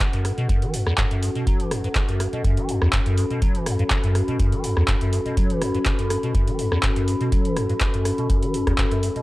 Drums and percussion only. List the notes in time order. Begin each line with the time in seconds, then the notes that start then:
0.00 kick, clap, closed hi-hat
0.13 closed hi-hat
0.25 cross-stick, open hi-hat
0.38 closed hi-hat
0.49 kick, closed hi-hat
0.62 closed hi-hat
0.74 open hi-hat
0.87 cross-stick
0.98 kick, clap, closed hi-hat
1.11 closed hi-hat
1.22 open hi-hat
1.35 closed hi-hat
1.47 kick, closed hi-hat
1.60 closed hi-hat
1.71 cross-stick, open hi-hat
1.84 closed hi-hat
1.95 kick, clap, closed hi-hat
2.09 closed hi-hat
2.20 cross-stick, open hi-hat
2.33 closed hi-hat
2.44 kick, closed hi-hat
2.57 closed hi-hat
2.69 open hi-hat
2.82 cross-stick
2.93 kick, clap, closed hi-hat
3.06 closed hi-hat
3.18 open hi-hat
3.30 closed hi-hat
3.42 kick, closed hi-hat
3.55 closed hi-hat
3.66 cross-stick, open hi-hat
3.79 closed hi-hat
3.90 kick, clap, closed hi-hat
4.04 closed hi-hat
4.15 cross-stick, open hi-hat
4.28 closed hi-hat
4.39 kick, closed hi-hat
4.52 closed hi-hat
4.64 open hi-hat
4.77 cross-stick
4.88 kick, clap, closed hi-hat
5.01 closed hi-hat
5.13 open hi-hat
5.26 closed hi-hat
5.37 kick, closed hi-hat
5.50 closed hi-hat
5.61 cross-stick, open hi-hat
5.74 closed hi-hat
5.85 kick, clap, closed hi-hat
5.99 closed hi-hat
6.10 cross-stick, open hi-hat
6.23 closed hi-hat
6.35 kick, closed hi-hat
6.47 closed hi-hat
6.59 open hi-hat
6.72 cross-stick
6.83 kick, clap, closed hi-hat
6.96 closed hi-hat
7.08 open hi-hat
7.21 closed hi-hat
7.32 kick, closed hi-hat
7.45 closed hi-hat
7.57 cross-stick, open hi-hat
7.69 closed hi-hat
7.81 kick, clap, closed hi-hat
7.94 closed hi-hat
8.05 cross-stick, open hi-hat
8.18 closed hi-hat
8.30 kick, closed hi-hat
8.43 closed hi-hat
8.54 open hi-hat
8.67 kick, cross-stick, closed hi-hat
8.78 kick, clap, closed hi-hat
8.91 closed hi-hat
9.03 open hi-hat
9.16 closed hi-hat